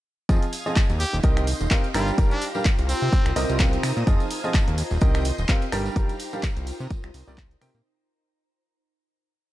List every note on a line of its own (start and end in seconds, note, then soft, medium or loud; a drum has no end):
0.29 0.38 F2 loud
0.29 0.42 F3 medium
0.29 0.42 C4 medium
0.29 1.95 D#4 medium
0.29 0.42 F4 medium
0.29 0.42 G#4 medium
0.29 0.42 D#5 medium
0.29 0.99 F5 medium
0.29 0.99 D#6 medium
0.29 0.99 G#6 medium
0.29 kick loud
0.29 closed hi-hat medium
0.29 tambourine soft
0.42 1.39 F5 medium
0.42 closed hi-hat medium
0.42 tambourine soft
0.53 open hi-hat loud
0.53 tambourine medium
0.66 0.84 F3 medium
0.66 0.84 C4 medium
0.66 0.84 F4 medium
0.66 0.84 G#4 medium
0.66 0.84 D#5 medium
0.66 tambourine soft
0.76 kick loud
0.76 clap loud
0.76 closed hi-hat medium
0.76 tambourine soft
0.90 1.05 D#2 medium
0.90 closed hi-hat medium
0.90 tambourine soft
1.00 1.17 G4 medium
1.00 1.93 D#5 medium
1.00 1.93 C6 medium
1.00 1.93 G6 medium
1.00 open hi-hat loud
1.00 tambourine medium
1.13 1.20 D#1 loud
1.13 tambourine soft
1.23 1.54 C2 medium
1.23 1.43 D#3 loud
1.23 1.43 C4 medium
1.23 1.43 G4 medium
1.23 1.43 A#4 medium
1.23 1.43 D#5 loud
1.23 kick loud
1.23 closed hi-hat medium
1.23 tambourine soft
1.28 3.36 G5 medium
1.37 finger snap medium
1.37 closed hi-hat soft
1.37 tambourine soft
1.43 2.34 C5 medium
1.43 open hi-hat loud
1.48 tambourine medium
1.61 1.68 D#1 medium
1.61 closed hi-hat soft
1.61 tambourine soft
1.71 1.84 C4 medium
1.71 1.84 G4 medium
1.71 1.84 A#4 medium
1.71 1.84 F5 loud
1.71 kick loud
1.71 clap loud
1.71 closed hi-hat medium
1.71 tambourine soft
1.84 closed hi-hat medium
1.84 tambourine soft
1.94 2.12 G1 medium
1.94 2.16 G3 medium
1.94 2.16 D4 medium
1.94 2.11 F4 medium
1.94 3.36 F4 medium
1.94 2.88 G4 medium
1.94 2.16 G4 medium
1.94 2.16 A#4 medium
1.94 2.88 F5 medium
1.94 2.16 A#5 loud
1.94 2.88 A#5 medium
1.94 finger snap medium
1.94 open hi-hat loud
1.94 tambourine medium
2.08 tambourine soft
2.18 2.27 G1 loud
2.18 2.31 G3 medium
2.18 2.31 D4 medium
2.18 2.31 G4 medium
2.18 2.31 A#4 medium
2.18 2.31 A#5 medium
2.18 kick loud
2.18 closed hi-hat medium
2.18 tambourine soft
2.31 2.46 D4 medium
2.31 closed hi-hat soft
2.31 tambourine soft
2.38 3.36 A#4 medium
2.38 open hi-hat loud
2.38 tambourine medium
2.55 2.65 G3 medium
2.55 2.65 D4 medium
2.55 2.65 G4 medium
2.55 2.65 A#4 medium
2.55 2.65 F5 medium
2.55 tambourine soft
2.65 kick loud
2.65 clap loud
2.65 closed hi-hat medium
2.65 tambourine soft
2.79 2.94 C2 loud
2.79 closed hi-hat medium
2.79 tambourine soft
2.89 3.36 C4 medium
2.89 4.36 D#4 medium
2.89 4.06 C5 medium
2.89 4.06 A#5 medium
2.89 4.76 D#6 medium
2.89 open hi-hat loud
2.89 tambourine medium
3.02 3.09 C3 loud
3.02 4.36 C5 medium
3.02 tambourine soft
3.09 4.36 A#5 medium
3.09 kick loud
3.09 closed hi-hat medium
3.09 tambourine medium
3.26 3.33 C2 loud
3.26 finger snap medium
3.26 closed hi-hat medium
3.26 tambourine soft
3.36 3.45 C2 loud
3.36 3.57 C3 medium
3.36 3.57 C4 medium
3.36 3.57 G4 medium
3.36 3.57 A#4 medium
3.36 3.57 D#5 loud
3.36 open hi-hat loud
3.36 tambourine medium
3.49 3.78 C2 loud
3.49 closed hi-hat soft
3.49 tambourine soft
3.60 3.79 C3 medium
3.60 3.79 C4 medium
3.60 3.79 G4 medium
3.60 3.79 A#4 medium
3.60 kick loud
3.60 clap loud
3.60 closed hi-hat medium
3.60 tambourine soft
3.73 closed hi-hat medium
3.73 tambourine soft
3.83 3.92 C3 medium
3.83 finger snap medium
3.83 open hi-hat loud
3.83 tambourine loud
3.97 4.04 A#2 medium
3.97 tambourine soft
4.07 4.16 F2 loud
4.07 4.20 F3 medium
4.07 4.20 C4 medium
4.07 5.17 F4 medium
4.07 4.20 F4 medium
4.07 4.20 G#4 medium
4.07 4.20 D#5 loud
4.07 4.77 F5 medium
4.07 4.77 G#6 medium
4.07 kick loud
4.07 closed hi-hat medium
4.07 tambourine medium
4.20 5.17 D#5 medium
4.20 closed hi-hat soft
4.20 tambourine soft
4.30 open hi-hat loud
4.30 tambourine medium
4.44 4.62 F3 medium
4.44 4.62 C4 medium
4.44 4.62 F4 medium
4.44 4.62 G#4 medium
4.44 4.62 D#5 medium
4.44 tambourine soft
4.54 kick loud
4.54 clap loud
4.54 closed hi-hat medium
4.54 tambourine medium
4.68 4.83 D#2 medium
4.68 closed hi-hat soft
4.68 tambourine soft
4.78 5.73 D#4 medium
4.78 5.71 D#5 medium
4.78 5.71 C6 medium
4.78 5.71 G6 medium
4.78 open hi-hat loud
4.78 tambourine loud
4.91 4.98 D#1 loud
4.91 tambourine soft
5.01 5.32 C2 medium
5.01 5.21 D#3 loud
5.01 5.21 C4 medium
5.01 5.21 G4 medium
5.01 5.21 A#4 medium
5.01 5.21 D#5 loud
5.01 kick loud
5.01 closed hi-hat medium
5.01 tambourine medium
5.13 7.14 G5 medium
5.13 finger snap medium
5.13 closed hi-hat soft
5.13 tambourine soft
5.20 6.12 C5 medium
5.25 open hi-hat loud
5.25 tambourine medium
5.38 5.46 D#1 medium
5.38 closed hi-hat soft
5.38 tambourine soft
5.49 5.62 C4 medium
5.49 5.62 G4 medium
5.49 5.62 A#4 medium
5.49 5.62 F5 loud
5.49 kick loud
5.49 clap loud
5.49 closed hi-hat medium
5.49 tambourine soft
5.62 closed hi-hat soft
5.62 tambourine soft
5.72 5.89 G1 medium
5.72 5.94 G3 medium
5.72 5.94 D4 medium
5.72 7.14 F4 medium
5.72 6.66 G4 medium
5.72 5.94 G4 medium
5.72 5.94 A#4 medium
5.72 6.66 F5 medium
5.72 7.83 A#5 medium
5.72 5.94 A#5 loud
5.72 finger snap medium
5.72 open hi-hat loud
5.72 tambourine medium
5.84 7.14 A#4 medium
5.84 tambourine soft
5.96 6.05 G1 loud
5.96 6.09 G3 medium
5.96 6.09 D4 medium
5.96 6.09 G4 medium
5.96 6.09 A#4 medium
5.96 6.09 A#5 medium
5.96 kick loud
5.96 closed hi-hat medium
5.96 tambourine medium
6.09 closed hi-hat soft
6.09 tambourine soft
6.20 open hi-hat loud
6.20 tambourine medium
6.33 6.43 G3 medium
6.33 6.43 D4 medium
6.33 6.43 G4 medium
6.33 6.43 A#4 medium
6.33 6.43 F5 medium
6.33 closed hi-hat soft
6.33 tambourine soft
6.43 kick loud
6.43 clap loud
6.43 closed hi-hat medium
6.43 tambourine medium
6.57 6.72 C2 loud
6.57 closed hi-hat soft
6.57 tambourine soft
6.67 7.85 D#4 medium
6.67 7.84 C5 medium
6.67 7.84 D#6 medium
6.67 open hi-hat loud
6.67 tambourine medium
6.80 6.87 C3 loud
6.80 7.85 C5 medium
6.80 tambourine soft
6.90 kick loud
6.90 closed hi-hat medium
6.90 tambourine medium
6.95 7.85 A#5 medium
7.03 7.11 C2 loud
7.03 finger snap medium
7.03 closed hi-hat soft
7.03 tambourine soft
7.14 7.23 C2 loud
7.14 open hi-hat loud
7.14 tambourine medium
7.27 7.56 C2 loud
7.27 7.38 C3 medium
7.27 7.38 C4 medium
7.27 7.38 G4 medium
7.27 7.38 A#4 medium
7.27 7.38 D5 medium
7.27 closed hi-hat soft
7.27 tambourine soft
7.38 kick loud
7.38 clap loud
7.38 closed hi-hat medium
7.38 tambourine soft
7.51 closed hi-hat medium
7.61 7.70 C3 medium
7.61 7.75 C3 medium
7.61 7.75 C4 medium
7.61 7.75 G4 medium
7.61 7.75 A#4 medium
7.61 7.75 G5 loud
7.61 finger snap medium
7.61 open hi-hat loud
7.61 tambourine medium
7.75 7.82 A#2 medium
7.75 tambourine soft